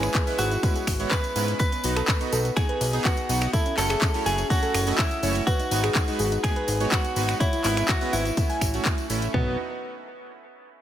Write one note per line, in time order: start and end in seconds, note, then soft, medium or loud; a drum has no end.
0.00 0.41 G#4 loud
0.00 0.09 B4 medium
0.00 finger snap medium
0.00 closed hi-hat soft
0.00 tambourine soft
0.14 0.21 E4 medium
0.14 kick loud
0.14 clap loud
0.14 closed hi-hat medium
0.14 tambourine medium
0.27 0.34 G#3 medium
0.27 0.34 B3 medium
0.27 0.34 C#4 medium
0.27 0.34 E4 medium
0.27 0.34 B4 loud
0.27 open hi-hat medium
0.27 tambourine soft
0.38 0.57 G#1 loud
0.38 1.14 F#4 medium
0.38 0.46 G#4 medium
0.38 open hi-hat loud
0.38 tambourine loud
0.51 0.58 E4 medium
0.51 closed hi-hat soft
0.51 tambourine soft
0.63 0.70 G#3 medium
0.63 0.70 B3 medium
0.63 0.70 C#4 medium
0.63 0.70 E4 medium
0.63 0.70 B4 medium
0.63 kick loud
0.63 closed hi-hat medium
0.63 tambourine medium
0.75 1.50 G#4 medium
0.75 closed hi-hat soft
0.75 tambourine soft
0.87 1.06 G#1 loud
0.87 finger snap medium
0.87 kick medium
0.87 open hi-hat loud
0.87 tambourine loud
0.99 1.10 G#3 loud
0.99 1.10 B3 medium
0.99 1.10 C#4 medium
0.99 1.10 E4 medium
0.99 1.10 C#5 loud
0.99 closed hi-hat soft
0.99 tambourine soft
1.11 1.58 B4 loud
1.11 kick loud
1.11 clap loud
1.11 closed hi-hat medium
1.11 tambourine medium
1.24 closed hi-hat soft
1.24 tambourine soft
1.36 1.54 G#2 medium
1.36 1.47 G#3 medium
1.36 1.46 B3 medium
1.36 1.46 C#4 medium
1.36 1.46 E4 medium
1.36 1.47 B4 medium
1.36 open hi-hat loud
1.36 tambourine loud
1.48 closed hi-hat soft
1.48 tambourine soft
1.59 2.53 B4 loud
1.59 1.67 B4 loud
1.59 kick loud
1.59 closed hi-hat medium
1.59 tambourine medium
1.72 1.79 B3 medium
1.72 closed hi-hat soft
1.72 tambourine soft
1.84 2.02 B1 loud
1.84 1.95 B3 medium
1.84 1.91 B3 medium
1.84 1.95 D#4 medium
1.84 1.95 F#4 medium
1.84 open hi-hat loud
1.84 tambourine loud
1.96 2.03 A4 medium
1.96 finger snap medium
1.96 closed hi-hat soft
1.96 tambourine soft
2.08 2.15 B3 medium
2.08 kick loud
2.08 clap loud
2.08 closed hi-hat medium
2.08 tambourine medium
2.21 2.27 B3 medium
2.21 2.27 D#4 medium
2.21 2.27 F#4 loud
2.21 closed hi-hat soft
2.21 tambourine soft
2.32 2.51 B1 loud
2.32 2.39 A4 loud
2.32 open hi-hat loud
2.32 tambourine loud
2.45 2.51 B3 medium
2.45 closed hi-hat soft
2.45 tambourine soft
2.56 2.63 B3 medium
2.56 2.63 D#4 medium
2.56 2.63 F#4 medium
2.56 3.05 G#4 loud
2.56 finger snap medium
2.56 kick loud
2.56 closed hi-hat medium
2.56 tambourine medium
2.69 3.44 B4 loud
2.69 closed hi-hat soft
2.81 2.99 B1 loud
2.81 open hi-hat loud
2.81 tambourine loud
2.93 3.04 B3 loud
2.93 3.04 D#4 medium
2.93 3.04 G#4 loud
2.93 closed hi-hat soft
2.93 tambourine soft
3.05 3.53 F#4 medium
3.05 kick loud
3.05 clap loud
3.05 closed hi-hat medium
3.05 tambourine medium
3.17 closed hi-hat soft
3.17 tambourine soft
3.29 3.48 B1 loud
3.29 3.40 B3 medium
3.29 3.40 D#4 medium
3.29 3.40 F#4 medium
3.29 open hi-hat loud
3.29 tambourine medium
3.42 finger snap medium
3.42 closed hi-hat soft
3.42 tambourine soft
3.53 3.77 E4 medium
3.53 3.60 A4 loud
3.53 kick loud
3.53 closed hi-hat medium
3.53 tambourine medium
3.66 3.72 C#4 medium
3.66 closed hi-hat soft
3.66 tambourine soft
3.77 3.96 F#1 loud
3.77 3.89 A3 medium
3.77 3.84 C#4 medium
3.77 3.89 C#4 medium
3.77 3.89 E4 medium
3.77 3.89 F#4 medium
3.77 4.23 A4 loud
3.77 3.89 C#5 medium
3.77 clap medium
3.77 open hi-hat loud
3.77 tambourine loud
3.90 3.96 G#4 loud
3.90 finger snap medium
3.90 closed hi-hat soft
3.90 tambourine soft
4.01 4.09 C#4 medium
4.01 kick loud
4.01 clap loud
4.01 closed hi-hat medium
4.01 tambourine medium
4.14 4.21 A3 medium
4.14 4.21 C#4 medium
4.14 4.21 E4 medium
4.14 4.21 F#4 medium
4.14 4.21 C#5 loud
4.14 closed hi-hat soft
4.14 tambourine soft
4.26 4.44 F#1 loud
4.26 4.33 G#4 medium
4.26 4.50 G#4 medium
4.26 open hi-hat loud
4.26 tambourine medium
4.38 4.45 C#4 medium
4.38 closed hi-hat soft
4.38 tambourine soft
4.50 4.57 A3 medium
4.50 4.57 C#4 medium
4.50 4.57 E4 medium
4.50 5.00 F#4 medium
4.50 4.57 F#4 medium
4.50 4.57 C#5 medium
4.50 kick loud
4.50 closed hi-hat medium
4.50 tambourine medium
4.63 5.38 A4 medium
4.63 closed hi-hat soft
4.63 tambourine soft
4.74 4.93 F#1 loud
4.74 finger snap medium
4.74 open hi-hat loud
4.74 tambourine medium
4.87 4.97 A3 loud
4.87 4.97 C#4 medium
4.87 4.97 E4 medium
4.87 4.97 F#4 medium
4.87 4.97 D#5 loud
4.87 closed hi-hat soft
4.87 tambourine soft
4.98 5.44 E4 medium
4.98 kick loud
4.98 clap loud
4.98 closed hi-hat medium
4.98 tambourine medium
5.11 closed hi-hat soft
5.11 tambourine soft
5.23 5.41 F#1 loud
5.23 5.34 A3 medium
5.23 5.34 C#4 medium
5.23 5.34 E4 medium
5.23 5.34 F#4 medium
5.23 5.34 C#5 loud
5.23 open hi-hat loud
5.23 tambourine medium
5.35 closed hi-hat soft
5.35 tambourine soft
5.47 6.40 F#4 loud
5.47 5.54 B4 loud
5.47 kick loud
5.47 closed hi-hat medium
5.47 tambourine soft
5.59 5.66 D#4 medium
5.59 closed hi-hat soft
5.59 tambourine soft
5.71 5.90 G#1 loud
5.71 5.82 G#3 medium
5.71 5.82 B3 medium
5.71 5.78 D#4 medium
5.71 5.82 D#4 medium
5.71 5.82 F#4 medium
5.71 5.82 B4 medium
5.71 open hi-hat loud
5.71 tambourine medium
5.84 5.90 G#4 medium
5.84 finger snap medium
5.84 closed hi-hat soft
5.84 tambourine soft
5.95 6.02 D#4 medium
5.95 kick loud
5.95 clap loud
5.95 closed hi-hat medium
5.95 tambourine soft
6.08 6.14 G#3 medium
6.08 6.14 B3 medium
6.08 6.14 D#4 medium
6.08 6.14 F#4 medium
6.08 6.14 B4 loud
6.08 closed hi-hat soft
6.08 tambourine soft
6.19 6.38 G#1 loud
6.19 6.26 G#4 medium
6.19 open hi-hat loud
6.19 tambourine medium
6.32 6.38 D#4 medium
6.32 closed hi-hat soft
6.32 tambourine soft
6.44 6.51 G#3 medium
6.44 6.51 B3 medium
6.44 6.51 D#4 medium
6.44 6.50 D#4 medium
6.44 6.51 F#4 medium
6.44 6.89 G#4 loud
6.44 6.51 B4 medium
6.44 finger snap medium
6.44 kick loud
6.44 closed hi-hat medium
6.44 tambourine soft
6.56 7.31 B4 loud
6.56 closed hi-hat soft
6.68 6.86 G#1 loud
6.68 open hi-hat loud
6.68 tambourine loud
6.80 6.91 G#3 loud
6.80 6.91 B3 medium
6.80 6.91 D#4 medium
6.80 6.91 F#4 medium
6.80 6.91 C#5 loud
6.80 closed hi-hat soft
6.80 tambourine soft
6.92 7.40 F#4 medium
6.92 kick loud
6.92 clap loud
6.92 closed hi-hat medium
6.92 tambourine medium
7.04 closed hi-hat soft
7.04 tambourine soft
7.16 7.35 G#1 loud
7.16 7.27 G#3 medium
7.16 7.27 B3 medium
7.16 7.27 D#4 medium
7.16 7.27 F#4 medium
7.16 7.27 B4 loud
7.16 open hi-hat loud
7.16 tambourine medium
7.29 finger snap medium
7.29 closed hi-hat soft
7.29 tambourine soft
7.40 7.63 E4 medium
7.40 7.47 C#5 loud
7.40 kick loud
7.40 closed hi-hat medium
7.40 tambourine medium
7.53 7.59 E4 medium
7.53 closed hi-hat soft
7.53 tambourine soft
7.64 7.83 G#1 loud
7.64 7.76 G#3 medium
7.64 7.76 B3 medium
7.64 7.76 C#4 medium
7.64 7.88 E4 medium
7.64 7.71 E4 medium
7.64 7.76 E4 medium
7.64 7.76 B4 medium
7.64 clap medium
7.64 open hi-hat loud
7.64 tambourine medium
7.77 7.83 E5 loud
7.77 finger snap medium
7.77 closed hi-hat soft
7.77 tambourine soft
7.88 7.96 E4 medium
7.88 8.14 F#4 medium
7.88 kick loud
7.88 clap loud
7.88 closed hi-hat medium
7.88 tambourine soft
8.01 8.08 G#3 loud
8.01 8.08 B3 medium
8.01 8.08 C#4 medium
8.01 8.08 E4 medium
8.01 8.08 B4 loud
8.01 open hi-hat medium
8.01 tambourine soft
8.13 8.31 G#1 loud
8.13 9.06 E4 medium
8.13 8.20 F#5 loud
8.13 open hi-hat loud
8.13 tambourine medium
8.25 8.32 E4 medium
8.25 closed hi-hat soft
8.25 tambourine soft
8.37 8.44 A3 medium
8.37 8.44 C#4 medium
8.37 8.44 E4 medium
8.37 kick loud
8.37 closed hi-hat medium
8.37 tambourine medium
8.49 9.25 G#5 medium
8.49 open hi-hat medium
8.49 tambourine soft
8.61 8.80 A1 loud
8.61 finger snap medium
8.61 kick medium
8.61 open hi-hat loud
8.61 tambourine loud
8.74 8.84 A3 loud
8.74 8.84 C#4 medium
8.74 8.84 F#4 loud
8.74 closed hi-hat soft
8.74 tambourine soft
8.85 kick loud
8.85 clap loud
8.85 closed hi-hat medium
8.85 tambourine soft
8.98 closed hi-hat soft
8.98 tambourine soft
9.10 9.28 A1 medium
9.10 9.21 A3 medium
9.10 9.21 C#4 medium
9.10 9.21 E4 loud
9.10 open hi-hat loud
9.10 tambourine medium
9.22 closed hi-hat soft
9.22 tambourine soft
9.34 9.57 B1 loud
9.34 9.57 B3 medium
9.34 9.52 B3 medium
9.34 9.52 D#4 medium
9.34 9.52 F#4 medium
9.34 9.52 F#5 medium
9.34 kick loud
9.34 floor tom loud